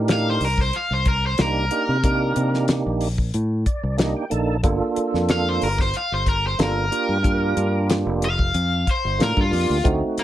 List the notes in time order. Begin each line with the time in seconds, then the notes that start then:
Already playing: A2 D4 D#4 G4 A#4
0.08 snare, closed hi-hat
0.12 F5
0.30 C5
0.40 C2, open hi-hat
0.45 A#4
0.58 C5, kick
0.73 F5, closed hi-hat
0.91 C2 C5
1.05 A#4, kick, closed hi-hat
1.27 C5
1.38 C2 A#3 D4 D#4 G4 A#4, snare, closed hi-hat
1.71 A#3 D4 D#4 G4, closed hi-hat
1.88 C3
2.04 A#3 D4 D#4 G4, kick, closed hi-hat
2.36 C3, closed hi-hat
2.54 snare
2.68 snare, closed hi-hat
2.86 A#1
3.01 open hi-hat
3.18 kick
3.34 A2, closed hi-hat
3.66 D5, kick, closed hi-hat
3.83 C2
3.97 A#3 D4 D#4 G4 D#5, snare, closed hi-hat
4.16 G5
4.30 A#1 A#3 D4 D#4 A4 A5, closed hi-hat
4.63 G1 A#3 D4 F4 A4, kick, closed hi-hat
4.96 muted fingered electric bass stroke, closed hi-hat
5.14 F2, snare
5.29 F5, snare, closed hi-hat
5.49 C5
5.62 G1 A#4, open hi-hat
5.78 C5, kick, snare
5.94 F5, closed hi-hat
6.12 G1 C5
6.26 A#4, kick, closed hi-hat
6.47 C5
6.58 G1 A#3 D4 F4 A4, snare, closed hi-hat
6.62 A#4
6.91 A#3 D4 F4 G4, closed hi-hat
7.09 G2
7.22 A#3 D4 F4 G4, kick, closed hi-hat
7.57 G2, closed hi-hat
7.90 snare, closed hi-hat
8.06 F1
8.22 F5, closed hi-hat
8.39 kick
8.54 F2, closed hi-hat
8.87 C5, kick, closed hi-hat
9.05 G1
9.18 A2 A#3 D4 F4 A4, snare, closed hi-hat
9.23 A#4
9.37 G2, kick
9.41 F4
9.51 F2 A#3 D4 F4 G4, open hi-hat
9.70 D2
9.84 D2 A3 C4 D#4 F#4, kick, closed hi-hat
10.17 C4, muted fingered electric bass stroke, closed hi-hat